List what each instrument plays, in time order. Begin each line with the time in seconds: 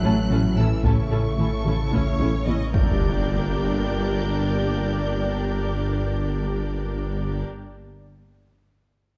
Already playing: detuned saw bass A1, cello section F#3, french horn section F#3, analog synth pad A3 C#4 E4 E5, violin section F#6
0.03 double bass section A1, tuba A1, analog synth bass A3, viola section C#4 E4, synth arpeggio sound E4, violin section A4 A5
0.30 double bass section A1, tuba A1, analog synth bass A2, synth arpeggio sound C#4, viola section C#4 E4, violin section A4 A5
0.56 double bass section A1, tuba A1, analog synth bass A2, cello section E3, french horn section E3, viola section C#4 E4, synth arpeggio sound A4, violin section A4 A5 E6, taiko mid
0.83 double bass section A1, tuba A1, analog synth bass A2, cello section C#3, french horn section C#3, synth arpeggio sound A3, viola section C#4 E4, violin section A4 A5 C#6, taiko
1.11 double bass section A1, tuba A1, analog synth bass A2, viola section C#4 E4, synth arpeggio sound A4, violin section A4 A5
1.38 double bass section A1, tuba A1, analog synth bass A2, viola section C#4 E4, violin section A4, taiko mid
1.64 double bass section A1, tuba A1, analog synth bass A3, viola section C#4 E4, taiko mid
1.91 double bass section A1, tuba A1, analog synth bass A2, synth arpeggio sound A3, viola section C#4 E4, violin section C#5, taiko
2.19 double bass section A1, tuba A1, analog synth bass A3, viola section C#4 E4, synth arpeggio sound E4, taiko high
2.46 tuba A1, double bass section A1, analog synth bass A2, synth arpeggio sound C#4, viola section C#4 E4, violin section D#5, taiko high
2.73 double bass section G1, tuba G1, detuned saw bass G1, cello section G3, french horn section G3, analog synth pad A#3 D4 G4 D5, viola section D4 G4, violin section A#4 D5 G6, taiko, impact